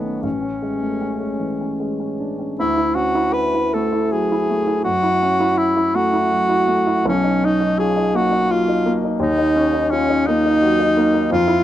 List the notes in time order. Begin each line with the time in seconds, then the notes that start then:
Already playing: B1 D#3 A3 B3 C#4 D#4
0.04 C#4
0.23 A1 C#4
0.42 C#4
0.62 G#3
0.82 A3
1.01 C#4
1.20 G#3
1.40 E3
1.61 C#4
1.80 G#3
2.00 C#4
2.20 D4
2.39 C#4
2.59 D2 E4
2.77 E4
2.95 C#4 F#4
3.15 E4
3.33 F#4 B4
3.54 E4
3.74 A3 A4
3.92 E4
4.12 F#3 G#4
4.32 E4
4.50 A3
4.67 E4
4.84 F#2 F#4
5.03 E4
5.23 C#4
5.40 E4
5.58 E4 F#4
5.77 E4
5.94 A3 F#4
6.13 E4
6.31 F#3
6.49 E4
6.68 A3
6.87 E4
7.06 B1 C#4
7.23 D#4
7.42 C#4 D#4
7.61 D#4
7.79 F4 G#4
7.96 D#4
8.14 A#3 F#4
8.31 D#4
8.50 F#3 F4
8.68 D#4
8.86 A#3
9.04 D#4
9.20 D#2 D#4
9.38 D#4
9.56 C#4
9.73 D#4
9.91 C#4 F4
10.09 D#4
10.27 A#3 D#4
10.46 D#4
10.62 F#3
10.80 D#4
10.97 A#3
11.14 D#4
11.31 F2 F4
11.48 E4